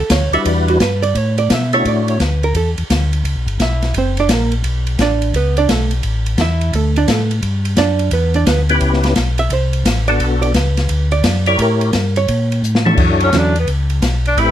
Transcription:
0.00 hollow-body jazz guitar A4
0.10 tonewheel organ D2, hollow-body jazz guitar C#5, kick, snare, hi-hat pedal, ride
0.31 tonewheel organ D2 G3 D4 E4 F#4 B4, hollow-body jazz guitar E5, ride
0.45 tonewheel organ E2, hollow-body jazz guitar D5, kick, ride
0.68 hollow-body jazz guitar F#4, ride
0.80 tonewheel organ G2, hollow-body jazz guitar B4, kick, snare, hi-hat pedal, ride
1.02 hollow-body jazz guitar D5, ride
1.15 tonewheel organ A2, hollow-body jazz guitar C#5, kick, ride
1.38 hollow-body jazz guitar D5, ride
1.50 tonewheel organ B2, hollow-body jazz guitar E5, kick, snare, hi-hat pedal, ride
1.73 tonewheel organ A3 D4 E4 F#4 C#5, hollow-body jazz guitar C#5, ride
1.85 tonewheel organ A2, hollow-body jazz guitar D5, kick, ride
2.08 hollow-body jazz guitar C#5, ride
2.20 tonewheel organ D2, hollow-body jazz guitar B4, kick, snare, hi-hat pedal, ride
2.43 hollow-body jazz guitar A#4, ride
2.54 tonewheel organ E2, hollow-body jazz guitar A4, kick, ride
2.78 tonewheel organ E2, ride
2.90 tonewheel organ D2, kick, snare, hi-hat pedal, ride
3.13 ride
3.24 tonewheel organ C#2, kick, ride
3.36 tonewheel organ B1
3.47 tonewheel organ G1, ride
3.60 tonewheel organ B1, hollow-body jazz guitar E4 E5, kick, snare, hi-hat pedal, ride
3.82 snare, ride
3.94 tonewheel organ F#1, hollow-body jazz guitar C4 C5, kick, ride
4.17 hollow-body jazz guitar D4 D5, ride
4.29 tonewheel organ A#1, kick, snare, hi-hat pedal, ride
4.33 hollow-body jazz guitar A#3 A#4
4.52 ride
4.64 tonewheel organ B1, kick, ride
4.87 ride
4.98 tonewheel organ A1, hollow-body jazz guitar D4 D5, kick, snare, hi-hat pedal, ride
5.22 ride
5.33 tonewheel organ C#2, hollow-body jazz guitar B3 B4, kick, ride
5.57 hollow-body jazz guitar D4 D5, ride
5.68 tonewheel organ B1, hollow-body jazz guitar A3 A4, kick, snare, hi-hat pedal, ride
5.91 ride
6.03 tonewheel organ A1, kick, ride
6.26 ride
6.38 tonewheel organ E2, hollow-body jazz guitar E5, kick, snare, hi-hat pedal, ride
6.42 hollow-body jazz guitar E4
6.61 ride
6.73 tonewheel organ D2, hollow-body jazz guitar A3 A4, kick, ride
6.96 hollow-body jazz guitar D4 D5, ride
7.07 tonewheel organ A2, hollow-body jazz guitar A3 A4, kick, snare, hi-hat pedal, ride
7.31 ride
7.42 tonewheel organ G2, kick, ride
7.65 ride
7.77 tonewheel organ F#2, hollow-body jazz guitar D4 D5, kick, snare, hi-hat pedal, ride
7.99 ride
8.11 tonewheel organ E2, hollow-body jazz guitar B3 B4, kick, ride
8.34 hollow-body jazz guitar D4 D5, ride
8.46 tonewheel organ D2, hollow-body jazz guitar B3 B4, kick, snare, hi-hat pedal, ride
8.69 tonewheel organ B3 C#4 E4 G4 B4, ride
8.81 tonewheel organ C#2, kick, ride
8.93 snare
9.03 snare, ride
9.15 tonewheel organ B1, kick, snare, hi-hat pedal, ride
9.38 hollow-body jazz guitar E5, ride
9.50 tonewheel organ C2, hollow-body jazz guitar C5, kick, ride
9.73 ride
9.85 tonewheel organ A1, kick, snare, hi-hat pedal, ride
10.08 tonewheel organ B3 D4 F#4 A4, hollow-body jazz guitar D5, ride
10.19 tonewheel organ B1, kick, ride
10.42 hollow-body jazz guitar D5, ride
10.54 tonewheel organ C#2, hollow-body jazz guitar B4, kick, snare, hi-hat pedal, ride
10.77 snare, ride
10.89 tonewheel organ D2, kick, ride
11.11 hollow-body jazz guitar D5, ride
11.23 tonewheel organ F#2, kick, snare, hi-hat pedal, ride
11.46 tonewheel organ E4 G4 A#4 C#5, hollow-body jazz guitar D5, ride
11.58 tonewheel organ A2, hollow-body jazz guitar A#4, kick, ride
11.81 ride
11.93 tonewheel organ G2, kick, snare, hi-hat pedal, ride
12.16 hollow-body jazz guitar C#5, ride
12.28 tonewheel organ A#2, kick, ride
12.52 ride
12.62 tonewheel organ A2, hi-hat pedal
12.75 snare
12.85 tonewheel organ D4 E4 F#4 A4 C#5, mid tom
12.97 tonewheel organ F#2, kick, crash
13.20 tenor saxophone C#4, ride
13.32 tonewheel organ E2, hollow-body jazz guitar D3 F#3 C#4 E4, kick, snare, hi-hat pedal, ride
13.38 tenor saxophone D4
13.56 tenor saxophone B3, ride
13.67 tonewheel organ C#2, kick, ride
13.90 ride
14.02 tonewheel organ B1, kick, snare, hi-hat pedal, ride
14.25 tenor saxophone D4, ride
14.37 tonewheel organ A1 A3 C4 E4 G4 B4, tenor saxophone E4, kick, ride

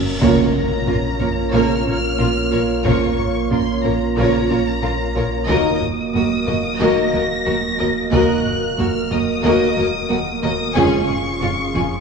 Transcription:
Already playing: sub bass F#1, ambient pad F#3 C#4 F#4 A#4, cymbal swell
0.20 double bass section A#1, sub bass A#1, cello section A#2, trombone section C#3 F3, french horn section A#3 A#4, synth arpeggio sound A#3, ambient pad A#3 F4 A#4 C#5, viola section A#3 F4, violin section A#4 C#5 A#5, taiko, impact
0.55 taiko low
0.87 double bass section A#1, cello section A#2, viola section A#3 F4, synth arpeggio sound C#4, violin section F4 A#4, taiko low
1.19 double bass section A#1, cello section A#2, viola section A#3 F4, synth arpeggio sound C#4, violin section A#4 C#5, taiko low
1.53 double bass section A#1, cello section A#2, trombone section C#3 F3, viola section A#3 F4, synth arpeggio sound A#3, french horn section A#3 A#4, violin section A#4 C#5 F6
1.86 double bass section A#1, cello section A#2, viola section A#3 F4, synth arpeggio sound C#4, violin section A#4 C#5
2.18 double bass section A#1, cello section A#2, viola section A#3 F4, synth arpeggio sound C#4, violin section F4 A#4
2.52 double bass section A#1, cello section A#2, viola section A#3 F4, synth arpeggio sound F4, violin section A#4 C#5
2.85 double bass section A#1, cello section A#2, trombone section C#3 F3, french horn section A#3 A#4, synth arpeggio sound A#3, viola section A#3 F4, violin section A#4 C#5 C#6, taiko
3.19 taiko low
3.51 double bass section A#1, cello section A#2, viola section A#3 F4, synth arpeggio sound C#4, violin section F4 A#4 C6, taiko low
3.84 double bass section A#1, cello section A#2, viola section A#3 F4, synth arpeggio sound C#4, violin section A#4 C#5 A#5, taiko low
4.16 double bass section A#1, cello section A#2, trombone section C#3 F3, viola section A#3 F4, french horn section A#3 A#4, synth arpeggio sound A#3, violin section A#4 C#5
4.50 double bass section A#1, cello section A#2, viola section A#3 F4, synth arpeggio sound C#4, violin section A#4 C#5
4.82 double bass section A#1, cello section A#2, viola section A#3 F4, synth arpeggio sound C#4, violin section F4 A#4
5.15 double bass section A#1, cello section A#2, viola section A#3 F4, synth arpeggio sound F4, violin section A#4 C#5
5.47 sub bass D#1, cello section D#2, double bass section D#2, trombone section D#3 F#3, synth arpeggio sound D#3, french horn section A#3 A#4, viola section A#3 F#4, ambient pad A#3 F#4 A#4 D#5, violin section A#4 D#5 D#6, taiko
5.82 taiko low
6.14 double bass section D#2, cello section D#2, synth arpeggio sound F#3, viola section A#3 F#4, violin section F#4 A#4, taiko low
6.47 cello section D#2, double bass section D#2, synth arpeggio sound F#3, viola section A#3 F#4, violin section A#4 D#5, taiko low
6.80 cello section D#2, double bass section D#2, synth arpeggio sound D#3, trombone section D#3 F#3, viola section A#3 F#4, french horn section A#3 A#4, violin section A#4 D#5 A#6
7.14 cello section D#2, double bass section D#2, synth arpeggio sound F#3, viola section A#3 F#4, violin section A#4 D#5
7.46 double bass section D#2, cello section D#2, synth arpeggio sound F#3, viola section A#3 F#4, violin section F#4 A#4
7.79 double bass section D#2, cello section D#2, synth arpeggio sound A#3, viola section A#3 F#4, violin section A#4 D#5
8.12 double bass section D#2, cello section D#2, trombone section D#3 F#3, synth arpeggio sound D#3, french horn section A#3 A#4, viola section A#3 F#4, violin section A#4 D#5 F#6, taiko
8.46 taiko low
8.78 cello section D#2, double bass section D#2, synth arpeggio sound F#3, viola section A#3 F#4, violin section F#4 A#4 F6, taiko low
9.11 cello section D#2, double bass section D#2, synth arpeggio sound F#3, viola section A#3 F#4, violin section A#4 D#5 D#6, taiko low
9.43 cello section D#2, double bass section D#2, synth arpeggio sound D#3, trombone section D#3 F#3, viola section A#3 F#4, french horn section A#3 A#4, violin section A#4 D#5
9.77 cello section D#2, double bass section D#2, synth arpeggio sound F#3, viola section A#3 F#4, violin section A#4 D#5
10.09 cello section D#2, double bass section D#2, synth arpeggio sound F#3, viola section A#3 F#4, violin section F#4 A#4
10.43 cello section D#2, double bass section D#2, synth arpeggio sound A#3, viola section A#3 F#4, violin section A#4 D#5 D#6
10.75 sub bass F1, double bass section F1, cello section F2, synth arpeggio sound C#3, trombone section F3 G#3, french horn section C#4 G#4, viola section C#4 F4, ambient pad C#4 F4 G#4 F5, violin section G#4 G#5 C#6, taiko
11.09 taiko low
11.41 double bass section F1, cello section F2, synth arpeggio sound F3, viola section C#4 F4, violin section F4 F5, taiko low
11.74 double bass section F1, cello section F2, synth arpeggio sound F3, viola section C#4 F4, violin section G#4 G#5, taiko low

